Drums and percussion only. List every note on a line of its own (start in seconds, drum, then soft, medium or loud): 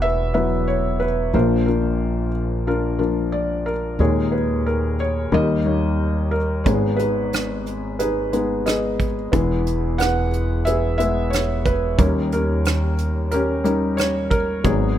6.66 kick medium
6.66 closed hi-hat medium
6.99 closed hi-hat soft
7.33 cross-stick medium
7.33 closed hi-hat medium
7.66 closed hi-hat soft
7.99 closed hi-hat medium
8.33 closed hi-hat soft
8.66 cross-stick medium
8.66 closed hi-hat medium
9.00 kick medium
9.00 closed hi-hat soft
9.33 kick medium
9.33 closed hi-hat medium
9.66 closed hi-hat medium
9.99 cross-stick medium
9.99 closed hi-hat medium
10.33 closed hi-hat soft
10.66 closed hi-hat medium
11.00 closed hi-hat medium
11.33 cross-stick medium
11.33 closed hi-hat medium
11.66 kick medium
11.66 closed hi-hat soft
11.99 kick medium
11.99 closed hi-hat medium
12.32 closed hi-hat soft
12.65 cross-stick medium
12.65 closed hi-hat medium
12.98 closed hi-hat soft
13.31 closed hi-hat medium
13.65 closed hi-hat soft
13.98 cross-stick medium
13.98 closed hi-hat medium
14.31 kick medium
14.31 closed hi-hat soft
14.64 kick medium
14.64 closed hi-hat medium